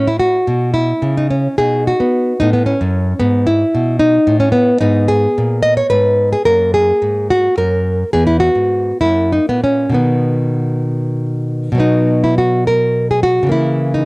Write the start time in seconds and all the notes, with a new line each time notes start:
Already playing: A2
0.08 E4
0.20 F#4
0.48 B2
0.74 E4
1.02 C#3
1.17 D#4
1.30 C#4
1.58 B2 D#4 G#4
1.87 F#4
2.00 B3
2.40 A2 B3 D#4
2.53 B3
2.66 C#4
2.81 F#2
3.19 G#2 B3
3.47 E4
3.75 B2
3.99 D#4
4.27 A2
4.40 C#4
4.52 B3
4.81 G#2 B3 D#4
5.08 G#4
5.38 A#2
5.63 D#5
5.77 C#5
5.90 G#2 B4
6.32 G#4
6.45 F#2 A#3 A#4
6.74 G#4
7.02 G#2
7.30 F#4
7.57 F#2 A#4
8.13 E2 B3 G#4
8.27 E4
8.40 F#4
8.55 G#2
9.01 F#2 A#3 E4
9.32 D#4
9.49 A#2 B3
9.64 C#4
9.89 B2 D#3
9.94 B3
11.72 B2 F#3
11.78 B3 D#4
12.24 E4
12.38 F#4
12.67 A#4
13.11 G#4
13.23 F#4
13.43 C#3 E3
13.49 A#3 E4
13.94 D#4